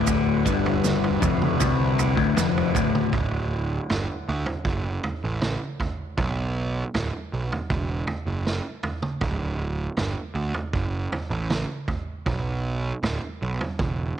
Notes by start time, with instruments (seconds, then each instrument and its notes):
Already playing: picked electric bass D1, clean electric guitar D2, tanpura D2 A2 D3, transistor combo organ D3 F#4 B4
0.07 kick, floor tom, maracas
0.45 picked electric bass G1, clean electric guitar G2, kick, maracas
0.53 tanpura D2
0.66 floor tom
0.84 snare, mid tom, maracas
1.04 floor tom
1.13 tanpura A2
1.21 picked electric bass F1, clean electric guitar F2, kick, floor tom, maracas
1.42 mid tom
1.60 picked electric bass C2, clean electric guitar C3, kick, floor tom, maracas
1.75 tanpura D3
1.99 floor tom, maracas
2.16 picked electric bass D1, clean electric guitar D2, kick
2.36 picked electric bass F1, clean electric guitar F2, tanpura D3, snare, floor tom, maracas
2.57 floor tom
2.74 picked electric bass D1, clean electric guitar D2, kick, floor tom, mid tom, maracas
2.95 mid tom
3.13 picked electric bass D1, kick, floor tom
3.90 picked electric bass G1, snare, floor tom
4.29 picked electric bass D2
4.46 floor tom
4.65 picked electric bass F#1, kick
5.03 floor tom
5.24 picked electric bass A1
5.42 snare, mid tom
5.80 kick, floor tom
6.18 picked electric bass B1, kick, floor tom
6.94 picked electric bass D1, snare, floor tom
7.33 picked electric bass B1
7.52 floor tom
7.70 picked electric bass E1, kick, mid tom
8.07 floor tom
8.26 picked electric bass F#1
8.47 snare
8.83 floor tom
9.02 mid tom
9.21 picked electric bass D1, kick, floor tom
9.97 picked electric bass G1, snare, floor tom
10.35 picked electric bass D2
10.54 floor tom
10.73 picked electric bass F#1, kick
11.12 floor tom
11.30 picked electric bass A1
11.50 snare, mid tom
11.88 kick, floor tom
12.26 picked electric bass B1, kick, floor tom
13.03 picked electric bass D1, snare, floor tom
13.42 picked electric bass B1
13.61 floor tom
13.79 picked electric bass E1, kick, mid tom